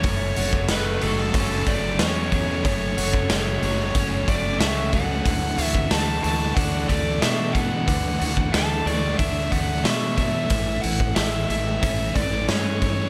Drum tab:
HH |o-o-o-o-o-o-o-o-|o-o-o-o-o-o-o-o-|o-o-o-o-o-o-o-o-|o-o-o-o-o-o-o-o-|
SD |----o-------o---|----o-------o---|----o-------o---|----o-------o---|
BD |o--o----o-o---o-|o--o----o-o---o-|o--o----o-o---o-|o--o----o-o---o-|

HH |o-o-o-o-o-o-o-o-|
SD |----o-------o---|
BD |o--o----o-o---o-|